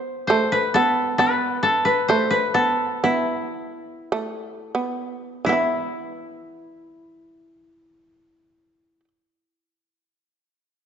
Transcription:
0, 0, Header, 1, 3, 480
1, 0, Start_track
1, 0, Tempo, 898204
1, 648, Time_signature, 2, 2, 24, 8
1, 1127, Tempo, 950872
1, 1607, Tempo, 1086957
1, 2087, Tempo, 1310044
1, 2567, Tempo, 1388889
1, 4432, End_track
2, 0, Start_track
2, 0, Title_t, "Koto"
2, 0, Program_c, 0, 107
2, 0, Note_on_c, 0, 72, 93
2, 144, Note_off_c, 0, 72, 0
2, 146, Note_on_c, 0, 72, 84
2, 278, Note_on_c, 0, 71, 82
2, 310, Note_off_c, 0, 72, 0
2, 396, Note_on_c, 0, 69, 90
2, 630, Note_off_c, 0, 71, 0
2, 632, Note_on_c, 0, 71, 94
2, 867, Note_off_c, 0, 69, 0
2, 870, Note_on_c, 0, 69, 91
2, 986, Note_off_c, 0, 71, 0
2, 988, Note_on_c, 0, 71, 82
2, 1114, Note_on_c, 0, 72, 85
2, 1145, Note_off_c, 0, 71, 0
2, 1226, Note_on_c, 0, 71, 78
2, 1256, Note_off_c, 0, 72, 0
2, 1344, Note_off_c, 0, 69, 0
2, 1346, Note_on_c, 0, 69, 80
2, 1596, Note_on_c, 0, 64, 70
2, 2058, Note_off_c, 0, 71, 0
2, 2197, Note_off_c, 0, 69, 0
2, 2510, Note_off_c, 0, 64, 0
2, 2569, Note_on_c, 0, 64, 73
2, 3797, Note_off_c, 0, 64, 0
2, 4432, End_track
3, 0, Start_track
3, 0, Title_t, "Shamisen"
3, 0, Program_c, 1, 106
3, 0, Note_on_c, 1, 59, 77
3, 158, Note_off_c, 1, 59, 0
3, 160, Note_on_c, 1, 57, 86
3, 402, Note_off_c, 1, 57, 0
3, 405, Note_on_c, 1, 59, 74
3, 631, Note_off_c, 1, 59, 0
3, 637, Note_on_c, 1, 59, 84
3, 1118, Note_off_c, 1, 59, 0
3, 1120, Note_on_c, 1, 57, 78
3, 1346, Note_off_c, 1, 57, 0
3, 1348, Note_on_c, 1, 59, 64
3, 1589, Note_off_c, 1, 59, 0
3, 1595, Note_on_c, 1, 59, 80
3, 2074, Note_off_c, 1, 59, 0
3, 2075, Note_on_c, 1, 57, 64
3, 2305, Note_off_c, 1, 57, 0
3, 2307, Note_on_c, 1, 59, 57
3, 2562, Note_off_c, 1, 59, 0
3, 2563, Note_on_c, 1, 52, 56
3, 2579, Note_on_c, 1, 59, 55
3, 2591, Note_on_c, 1, 64, 56
3, 3791, Note_off_c, 1, 52, 0
3, 3806, Note_off_c, 1, 59, 0
3, 3818, Note_off_c, 1, 64, 0
3, 4432, End_track
0, 0, End_of_file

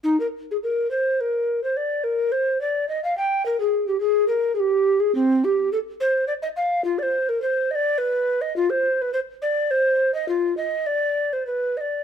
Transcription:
0, 0, Header, 1, 2, 480
1, 0, Start_track
1, 0, Tempo, 584795
1, 30, Time_signature, 3, 2, 24, 8
1, 988, Tempo, 563910
1, 6748, Tempo, 579710
1, 9148, Tempo, 604839
1, 10075, End_track
2, 0, Start_track
2, 0, Title_t, "Recorder"
2, 0, Program_c, 0, 74
2, 30, Note_on_c, 0, 63, 85
2, 155, Note_off_c, 0, 63, 0
2, 164, Note_on_c, 0, 70, 53
2, 219, Note_off_c, 0, 70, 0
2, 420, Note_on_c, 0, 68, 54
2, 469, Note_off_c, 0, 68, 0
2, 518, Note_on_c, 0, 70, 73
2, 740, Note_off_c, 0, 70, 0
2, 745, Note_on_c, 0, 72, 68
2, 990, Note_on_c, 0, 70, 65
2, 1003, Note_off_c, 0, 72, 0
2, 1349, Note_off_c, 0, 70, 0
2, 1356, Note_on_c, 0, 72, 66
2, 1468, Note_on_c, 0, 74, 72
2, 1481, Note_off_c, 0, 72, 0
2, 1698, Note_on_c, 0, 70, 65
2, 1711, Note_off_c, 0, 74, 0
2, 1938, Note_on_c, 0, 72, 71
2, 1950, Note_off_c, 0, 70, 0
2, 2181, Note_off_c, 0, 72, 0
2, 2186, Note_on_c, 0, 74, 81
2, 2416, Note_off_c, 0, 74, 0
2, 2421, Note_on_c, 0, 75, 76
2, 2544, Note_off_c, 0, 75, 0
2, 2552, Note_on_c, 0, 77, 66
2, 2660, Note_off_c, 0, 77, 0
2, 2666, Note_on_c, 0, 79, 85
2, 2901, Note_off_c, 0, 79, 0
2, 2907, Note_on_c, 0, 70, 82
2, 3023, Note_off_c, 0, 70, 0
2, 3029, Note_on_c, 0, 68, 80
2, 3255, Note_off_c, 0, 68, 0
2, 3260, Note_on_c, 0, 67, 61
2, 3365, Note_off_c, 0, 67, 0
2, 3370, Note_on_c, 0, 68, 82
2, 3602, Note_off_c, 0, 68, 0
2, 3607, Note_on_c, 0, 70, 84
2, 3835, Note_off_c, 0, 70, 0
2, 3840, Note_on_c, 0, 68, 80
2, 3877, Note_on_c, 0, 67, 87
2, 3886, Note_off_c, 0, 68, 0
2, 4219, Note_on_c, 0, 68, 76
2, 4232, Note_off_c, 0, 67, 0
2, 4341, Note_off_c, 0, 68, 0
2, 4346, Note_on_c, 0, 60, 94
2, 4597, Note_on_c, 0, 67, 78
2, 4610, Note_off_c, 0, 60, 0
2, 4830, Note_off_c, 0, 67, 0
2, 4835, Note_on_c, 0, 69, 87
2, 4889, Note_off_c, 0, 69, 0
2, 5074, Note_on_c, 0, 72, 85
2, 5300, Note_off_c, 0, 72, 0
2, 5305, Note_on_c, 0, 74, 92
2, 5356, Note_off_c, 0, 74, 0
2, 5430, Note_on_c, 0, 75, 85
2, 5481, Note_off_c, 0, 75, 0
2, 5552, Note_on_c, 0, 77, 94
2, 5785, Note_off_c, 0, 77, 0
2, 5790, Note_on_c, 0, 65, 99
2, 5910, Note_on_c, 0, 74, 82
2, 5922, Note_off_c, 0, 65, 0
2, 5945, Note_on_c, 0, 72, 89
2, 5954, Note_off_c, 0, 74, 0
2, 6169, Note_on_c, 0, 70, 78
2, 6182, Note_off_c, 0, 72, 0
2, 6274, Note_off_c, 0, 70, 0
2, 6279, Note_on_c, 0, 72, 103
2, 6526, Note_on_c, 0, 75, 99
2, 6538, Note_off_c, 0, 72, 0
2, 6562, Note_on_c, 0, 74, 107
2, 6571, Note_off_c, 0, 75, 0
2, 6757, Note_on_c, 0, 71, 102
2, 6770, Note_off_c, 0, 74, 0
2, 7115, Note_on_c, 0, 75, 100
2, 7128, Note_off_c, 0, 71, 0
2, 7233, Note_off_c, 0, 75, 0
2, 7238, Note_on_c, 0, 65, 90
2, 7352, Note_on_c, 0, 72, 96
2, 7364, Note_off_c, 0, 65, 0
2, 7614, Note_on_c, 0, 71, 79
2, 7627, Note_off_c, 0, 72, 0
2, 7705, Note_off_c, 0, 71, 0
2, 7710, Note_on_c, 0, 72, 102
2, 7764, Note_off_c, 0, 72, 0
2, 7948, Note_on_c, 0, 74, 93
2, 8187, Note_on_c, 0, 72, 92
2, 8199, Note_off_c, 0, 74, 0
2, 8542, Note_off_c, 0, 72, 0
2, 8547, Note_on_c, 0, 75, 97
2, 8660, Note_off_c, 0, 75, 0
2, 8664, Note_on_c, 0, 65, 99
2, 8897, Note_off_c, 0, 65, 0
2, 8902, Note_on_c, 0, 75, 84
2, 9144, Note_on_c, 0, 74, 95
2, 9157, Note_off_c, 0, 75, 0
2, 9514, Note_on_c, 0, 72, 77
2, 9526, Note_off_c, 0, 74, 0
2, 9619, Note_off_c, 0, 72, 0
2, 9624, Note_on_c, 0, 71, 76
2, 9864, Note_on_c, 0, 75, 62
2, 9876, Note_off_c, 0, 71, 0
2, 9893, Note_on_c, 0, 74, 67
2, 9901, Note_off_c, 0, 75, 0
2, 10075, Note_off_c, 0, 74, 0
2, 10075, End_track
0, 0, End_of_file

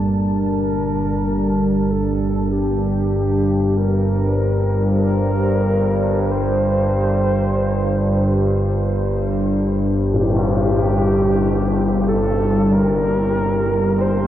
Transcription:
0, 0, Header, 1, 6, 480
1, 0, Start_track
1, 0, Time_signature, 4, 2, 24, 8
1, 0, Key_signature, -2, "minor"
1, 0, Tempo, 1263158
1, 2879, Tempo, 1284797
1, 5380, End_track
2, 0, Start_track
2, 0, Title_t, "Soft synth lead"
2, 0, Program_c, 0, 80
2, 8, Note_on_c, 0, 70, 96
2, 725, Note_on_c, 0, 69, 91
2, 731, Note_off_c, 0, 70, 0
2, 959, Note_on_c, 0, 67, 94
2, 964, Note_off_c, 0, 69, 0
2, 1434, Note_on_c, 0, 70, 93
2, 1440, Note_off_c, 0, 67, 0
2, 1911, Note_off_c, 0, 70, 0
2, 1913, Note_on_c, 0, 70, 114
2, 2399, Note_on_c, 0, 72, 105
2, 2404, Note_off_c, 0, 70, 0
2, 3599, Note_off_c, 0, 72, 0
2, 3839, Note_on_c, 0, 67, 104
2, 4563, Note_on_c, 0, 69, 95
2, 4569, Note_off_c, 0, 67, 0
2, 4803, Note_on_c, 0, 70, 110
2, 4809, Note_off_c, 0, 69, 0
2, 5282, Note_on_c, 0, 72, 104
2, 5288, Note_off_c, 0, 70, 0
2, 5380, Note_off_c, 0, 72, 0
2, 5380, End_track
3, 0, Start_track
3, 0, Title_t, "Ambient pad"
3, 0, Program_c, 1, 92
3, 0, Note_on_c, 1, 55, 63
3, 0, Note_on_c, 1, 58, 74
3, 0, Note_on_c, 1, 62, 61
3, 0, Note_on_c, 1, 81, 65
3, 929, Note_on_c, 1, 72, 73
3, 1067, Note_off_c, 1, 58, 0
3, 3834, Note_off_c, 1, 55, 0
3, 3835, Note_on_c, 1, 60, 81
3, 3922, Note_on_c, 1, 67, 61
3, 4636, Note_on_c, 1, 74, 63
3, 4692, Note_off_c, 1, 62, 0
3, 4811, Note_off_c, 1, 72, 0
3, 4928, Note_off_c, 1, 81, 0
3, 5380, Note_off_c, 1, 60, 0
3, 5380, Note_off_c, 1, 67, 0
3, 5380, Note_off_c, 1, 74, 0
3, 5380, End_track
4, 0, Start_track
4, 0, Title_t, "Church bells"
4, 0, Program_c, 2, 14
4, 4795, Note_on_c, 2, 55, 65
4, 5250, Note_off_c, 2, 55, 0
4, 5271, Note_on_c, 2, 55, 62
4, 5380, Note_off_c, 2, 55, 0
4, 5380, End_track
5, 0, Start_track
5, 0, Title_t, "Synth drone"
5, 0, Program_c, 3, 95
5, 0, Note_on_c, 3, 31, 54
5, 0, Note_on_c, 3, 43, 66
5, 5380, Note_off_c, 3, 31, 0
5, 5380, Note_off_c, 3, 43, 0
5, 5380, End_track
6, 0, Start_track
6, 0, Title_t, "Tam-tam"
6, 3835, Note_on_c, 9, 52, 74
6, 3873, Note_off_c, 9, 52, 0
6, 5380, End_track
0, 0, End_of_file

